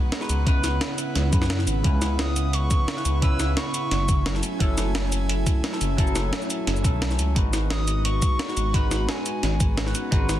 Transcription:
Already playing: tine electric piano G#3 D#4 F#4 B4, analog synth pad B3 G#4 F#5
0.12 snare, closed hi-hat
0.21 tine electric piano G#3 D#4 F#4 B4, snare
0.29 detuned saw bass C#2, closed hi-hat, shaker
0.45 tine electric piano C#3 C#4 E4 B4, analog synth pad E4, kick, closed hi-hat
0.64 snare, closed hi-hat, shaker
0.81 snare, closed hi-hat
0.98 closed hi-hat, shaker
1.16 detuned saw bass C#2, snare, closed hi-hat
1.31 detuned saw bass F#2, tine electric piano C#3 C#4 E4 B4, kick, closed hi-hat, shaker
1.42 snare
1.50 snare, closed hi-hat
1.59 snare
1.67 detuned saw bass G#1, closed hi-hat, shaker
1.83 detuned saw bass C#2, tine electric piano C#3 C#4 E4 B4, kick, closed hi-hat
2.02 snare, closed hi-hat, shaker
2.19 soft synth lead D#6, snare, closed hi-hat
2.36 closed hi-hat, shaker
2.53 soft synth lead C#6, closed hi-hat
2.71 kick, closed hi-hat, shaker
2.88 snare, closed hi-hat
2.96 tine electric piano C#3 C#4 E4 B4, snare
3.05 detuned saw bass C#2, closed hi-hat, shaker
3.21 tine electric piano C#3 C#4 E4 B4, soft synth lead E6, kick, closed hi-hat
3.40 snare, closed hi-hat, shaker
3.57 soft synth lead C#6, snare, closed hi-hat
3.74 closed hi-hat, shaker
3.91 detuned saw bass F#1, analog synth pad A3 G#5, snare, closed hi-hat
4.09 kick, closed hi-hat, shaker
4.26 snare, closed hi-hat
4.34 tine electric piano F#3 C#4 E4 A4, snare
4.43 closed hi-hat, shaker
4.59 detuned saw bass F#1, tine electric piano F#3 C#4 E4 A4, kick, closed hi-hat
4.78 snare, closed hi-hat, shaker
4.95 snare, closed hi-hat
5.12 closed hi-hat, shaker
5.29 closed hi-hat
5.47 kick, closed hi-hat, shaker
5.64 snare, closed hi-hat
5.72 tine electric piano F#3 C#4 E4 A4, snare
5.81 detuned saw bass F#1, closed hi-hat, shaker
5.97 tine electric piano F#3 C#4 E4 A4, kick, closed hi-hat
6.07 shaker
6.16 snare, closed hi-hat, shaker
6.33 snare, closed hi-hat
6.42 shaker
6.50 closed hi-hat, shaker
6.67 detuned saw bass F#1, snare, closed hi-hat
6.76 shaker
6.83 detuned saw bass B1, tine electric piano F#3 C#4 E4 A4, kick, closed hi-hat, shaker
7.02 snare, closed hi-hat
7.11 snare, shaker
7.19 detuned saw bass C#2, closed hi-hat, shaker
7.35 detuned saw bass G#1, tine electric piano G#3 D#4 F#4 B4, analog synth pad B3 D#4 F#4, kick, closed hi-hat
7.53 snare, closed hi-hat, shaker
7.70 soft synth lead D#6, snare, closed hi-hat
7.88 closed hi-hat, shaker
8.05 soft synth lead C#6, closed hi-hat
8.22 kick, closed hi-hat, shaker
8.39 snare, closed hi-hat
8.48 tine electric piano G#3 D#4 F#4 B4, snare
8.57 detuned saw bass G#1, closed hi-hat, shaker
8.73 tine electric piano G#3 D#4 F#4 B4, soft synth lead B5, kick, closed hi-hat
8.91 snare, closed hi-hat, shaker
9.08 soft synth lead G#5, snare, closed hi-hat
9.26 closed hi-hat, shaker
9.43 detuned saw bass G#1, analog synth pad C#4, snare, closed hi-hat
9.60 kick, closed hi-hat, shaker
9.78 snare, closed hi-hat
9.86 tine electric piano G#3 D#4 F#4 B4, snare
9.95 closed hi-hat, shaker
10.11 detuned saw bass G#1, tine electric piano G#3 D#4 F#4 B4, kick, closed hi-hat
10.29 snare, closed hi-hat, shaker

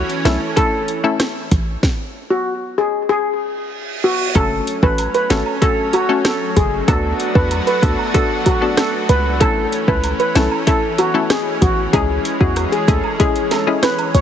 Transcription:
Already playing: analog synth pad E3 A3 C#4
0.09 closed hi-hat
0.25 808-style bass B1, synth pluck A3 C#4 E4 A4, steel pan A4, cross-stick, snare, closed hi-hat
0.56 synth pluck A3 C#4 E4 A4, steel pan A4, kick, closed hi-hat
0.88 closed hi-hat
1.04 synth pluck A3 C#4 E4 A4
1.20 cross-stick, snare, closed hi-hat
1.51 808-style bass A1, kick, closed hi-hat
1.83 kick, snare
2.30 steel pan F#4
2.78 steel pan G#4
3.09 steel pan G#4, reverse cymbal
4.04 steel pan F#4
4.35 808-style bass F#1, analog synth pad F#3 A3 C#4, synth pluck A3 C#4 F#4 A4, steel pan A4, kick, closed hi-hat, high woodblock
4.67 closed hi-hat, cabasa
4.83 808-style bass A1, synth pluck A3 C#4 F#4 A4, steel pan B4, kick
4.98 closed hi-hat, high woodblock
5.14 steel pan B4, closed hi-hat
5.30 808-style bass G#1, synth pluck A3 C#4 F#4 A4, steel pan A4, cross-stick, snare, closed hi-hat, cabasa
5.46 high woodblock
5.62 synth pluck A3 C#4 F#4 A4, steel pan A4, kick, closed hi-hat
5.93 steel pan F#4, closed hi-hat, cabasa, high woodblock
6.09 synth pluck A3 C#4 F#4 A4
6.25 steel pan A4, cross-stick, snare, closed hi-hat
6.56 808-style bass F#1, steel pan G#4, kick, closed hi-hat, cabasa
6.88 808-style bass D2, synth pluck B3 D4 F#4 A4, analog synth pad B3 D4 F#4, steel pan A4, kick, closed hi-hat, high woodblock
7.20 closed hi-hat, cabasa
7.35 808-style bass E2, synth pluck B3 D4 F#4 A4, steel pan B4, kick
7.51 closed hi-hat, high woodblock
7.67 steel pan B4, closed hi-hat
7.82 808-style bass D2, synth pluck B3 D4 F#4 A4, steel pan A4, kick, closed hi-hat, cabasa
7.99 high woodblock
8.14 synth pluck B3 D4 F#4 A4, steel pan A4, kick, closed hi-hat
8.46 steel pan F#4, kick, closed hi-hat, cabasa, high woodblock
8.61 synth pluck B3 D4 F#4 A4
8.77 steel pan A4, cross-stick, snare, closed hi-hat
9.09 808-style bass C#2, steel pan B4, closed hi-hat, cabasa
9.40 808-style bass A1, analog synth pad E3 C#4, synth pluck A3 C#4 E4 A4, steel pan A4, kick, closed hi-hat, high woodblock
9.72 closed hi-hat, cabasa
9.88 808-style bass C#2, synth pluck A3 C#4 E4 A4, steel pan B4, kick
10.04 closed hi-hat, high woodblock
10.20 steel pan B4, closed hi-hat
10.35 808-style bass B1, synth pluck A3 C#4 E4 A4, steel pan A4, cross-stick, snare, closed hi-hat, cabasa
10.51 high woodblock
10.67 synth pluck A3 C#4 E4 A4, steel pan A4, kick, closed hi-hat
10.98 steel pan F#4, closed hi-hat, cabasa, high woodblock
11.14 synth pluck A3 C#4 E4 A4
11.30 steel pan G#4, cross-stick, snare, closed hi-hat
11.62 808-style bass A1, steel pan F#4, kick, closed hi-hat, cabasa
11.93 808-style bass C#2, synth pluck G#3 C#4 E4 G#4, analog synth pad G#3, steel pan G#4, kick, closed hi-hat, high woodblock
12.25 closed hi-hat, cabasa
12.40 808-style bass E2, synth pluck G#3 C#4 E4 G#4, steel pan F#4, kick
12.56 cross-stick, closed hi-hat, high woodblock
12.72 steel pan G#4, closed hi-hat
12.88 808-style bass D2, synth pluck G#3 C#4 E4 G#4, steel pan A4, kick, closed hi-hat, cabasa
13.04 high woodblock
13.20 synth pluck G#3 C#4 E4 G#4, steel pan G#4, kick, closed hi-hat
13.36 closed hi-hat
13.51 steel pan A4, snare, closed hi-hat, cabasa, high woodblock
13.67 synth pluck G#3 C#4 E4 G#4
13.83 steel pan B4, cross-stick, snare, closed hi-hat
13.98 closed hi-hat, high woodblock
14.14 808-style bass C#2, steel pan C#5, closed hi-hat, cabasa

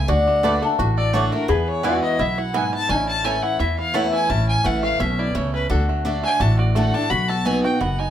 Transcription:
Already playing: resonator guitar played with a steel bar A4, fiddle G#5
0.08 upright bass D2, steel-string acoustic guitar D3, five-string banjo F#4, resonator guitar played with a steel bar D5, fiddle F#5
0.27 five-string banjo A3
0.43 steel-string acoustic guitar D3 A3 D4 F#4, mandolin A3 F#4 D5 A5, five-string banjo A4, resonator guitar played with a steel bar B4
0.62 five-string banjo D4, steel-string acoustic guitar D4 F#4, resonator guitar played with a steel bar A4
0.79 upright bass A1, steel-string acoustic guitar A2, five-string banjo F#4
0.97 five-string banjo A4, fiddle D5
1.13 steel-string acoustic guitar D3 A3 D4 F#4, mandolin A3 F#4 D5 A5, five-string banjo F#4, fiddle C#5
1.32 five-string banjo A3, steel-string acoustic guitar D4 F#4, fiddle A#4
1.48 steel-string acoustic guitar E2, upright bass E2, five-string banjo B3, resonator guitar played with a steel bar G#4, fiddle B4
1.68 fiddle C#5
1.83 steel-string acoustic guitar E3 G#3 B3 F#4, mandolin B3 F#4 E5 G#5, five-string banjo E4, resonator guitar played with a steel bar F#4, fiddle D5
2.03 five-string banjo E4, fiddle D#5
2.19 upright bass B1, five-string banjo E4, fiddle E5
2.38 five-string banjo E4, fiddle F#5
2.53 steel-string acoustic guitar G#2, mandolin B3 F#4 E5 G#5, five-string banjo B3, fiddle G#5
2.59 resonator guitar played with a steel bar E4
2.73 five-string banjo E4, fiddle A5
2.89 upright bass A1, steel-string acoustic guitar A2, five-string banjo C#4, resonator guitar played with a steel bar E4, fiddle G#5
3.09 fiddle A5
3.24 steel-string acoustic guitar E3 A3 C#4 E4, mandolin A3 E4 C#5 A5, five-string banjo A4, fiddle G#5
3.42 five-string banjo E4, fiddle F#5
3.60 upright bass E2, steel-string acoustic guitar E2, five-string banjo E3, fiddle E5
3.79 five-string banjo E4, fiddle F5
3.94 steel-string acoustic guitar E3 A3 C#4 E4, mandolin A3 E4 C#5 A5, five-string banjo A4, fiddle F#5
4.13 five-string banjo E4, fiddle G#5
4.29 upright bass A1, steel-string acoustic guitar A2, five-string banjo C#4, resonator guitar played with a steel bar E4, fiddle A5
4.49 fiddle G#5
4.64 upright bass A1, steel-string acoustic guitar E3 A3 C#4 E4, five-string banjo C#4, fiddle F#5
4.83 five-string banjo A3, fiddle F5
5.00 upright bass B1, steel-string acoustic guitar B2, five-string banjo C#4, fiddle E5
5.19 five-string banjo E4, fiddle D5
5.35 upright bass C#2, steel-string acoustic guitar C#3, five-string banjo A3, fiddle C#5
5.54 five-string banjo C#4, fiddle B4
5.70 upright bass D2, steel-string acoustic guitar D3, five-string banjo D4, resonator guitar played with a steel bar F#4, fiddle A4
5.89 five-string banjo A3
6.05 steel-string acoustic guitar D3 A3 D4 F#4, five-string banjo D4
6.24 five-string banjo A3, fiddle G#5
6.40 upright bass A1, steel-string acoustic guitar A2, five-string banjo D4, resonator guitar played with a steel bar F#4, fiddle A5
6.59 five-string banjo F#4, fiddle D5
6.75 steel-string acoustic guitar D3 A3 D4 F#4, five-string banjo A3, resonator guitar played with a steel bar A4, fiddle F#5
6.94 five-string banjo D4, steel-string acoustic guitar D4 F#4, fiddle A5
7.10 upright bass B1, steel-string acoustic guitar B2, resonator guitar played with a steel bar F#4, five-string banjo F#4, fiddle B5
7.28 five-string banjo A4, fiddle A5
7.45 steel-string acoustic guitar F#3 B3 D#4 F#4, five-string banjo D#4, fiddle G#5
7.64 steel-string acoustic guitar D#4 F#4, five-string banjo F#4, fiddle G5
7.79 upright bass F#1, steel-string acoustic guitar F#2, five-string banjo B3, fiddle F#5
7.99 five-string banjo D#4, fiddle G#5

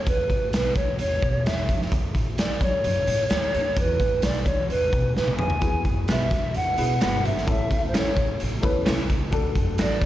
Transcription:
0.06 upright bass E2, pan flute B4, kick, closed hi-hat
0.30 upright bass G#2, kick, closed hi-hat
0.53 upright bass B1, pan flute B4, snare, closed hi-hat
0.76 upright bass E3, pan flute C#5, kick, closed hi-hat
0.99 upright bass E2, pan flute C#5, closed hi-hat
1.22 upright bass B2, kick, closed hi-hat
1.45 upright bass E2, pan flute E5, snare, closed hi-hat
1.69 upright bass F2, kick, closed hi-hat
1.82 snare
1.92 upright bass F#2, kick, closed hi-hat
2.15 upright bass A2, kick, closed hi-hat
2.38 upright bass C#2, pan flute D5, snare, closed hi-hat
2.61 upright bass F#3, pan flute C#5, kick, closed hi-hat
2.84 upright bass F#2, closed hi-hat
3.07 upright bass A2, closed hi-hat
3.30 upright bass D2, snare, closed hi-hat
3.54 upright bass D#2, closed hi-hat
3.76 upright bass E2, pan flute B4, kick, closed hi-hat
4.00 kick, closed hi-hat
4.22 upright bass B1, pan flute D5, snare, closed hi-hat
4.46 upright bass E3, pan flute C#5, kick, closed hi-hat
4.69 upright bass E2, pan flute B4, closed hi-hat
4.93 upright bass B2, kick, closed hi-hat
5.15 upright bass D2, pan flute B4, snare
5.28 high tom
5.38 upright bass D#2, pan flute G#5, mid tom
5.50 floor tom
5.61 upright bass E2, upright piano B3 E4 F#4 G#4, kick, closed hi-hat
5.85 upright bass F#2, kick, closed hi-hat
6.08 upright bass B1, clean electric guitar G#3 B3 F#4 B4, pan flute E5, snare, closed hi-hat
6.31 upright bass E3, kick, snare, closed hi-hat
6.54 upright bass E2, pan flute F#5, closed hi-hat
6.77 upright bass B2, upright piano B3 E4 F#4 G#4, closed hi-hat
7.01 upright bass G1, clean electric guitar G#3 B3 F#4 B4, pan flute F#5, snare, closed hi-hat
7.25 upright bass G#1, pan flute E5, closed hi-hat
7.38 snare
7.46 upright bass A1, upright piano A3 C#4 E4 A4, kick, closed hi-hat
7.51 pan flute E5
7.71 upright bass C#2, kick, closed hi-hat
7.88 pan flute C5
7.94 upright bass E2, clean electric guitar C#4 E4 A4 C#5, pan flute C#5, snare, closed hi-hat
8.17 upright bass A2, kick, closed hi-hat
8.40 upright bass A1, closed hi-hat
8.62 upright bass E2, upright piano A3 C#4 E4 B4, kick, closed hi-hat
8.86 upright bass C2, clean electric guitar C#4 E4 A4 C#5, snare, closed hi-hat
9.10 upright bass C#2, kick, closed hi-hat
9.31 upright bass D2, upright piano A3 D4 F#4 A4, kick, closed hi-hat
9.55 upright bass F#2, kick, closed hi-hat
9.78 upright bass A1, clean electric guitar D4 F#4 A4 D5, pan flute D5, snare, closed hi-hat
10.02 upright bass D3, kick, snare, closed hi-hat

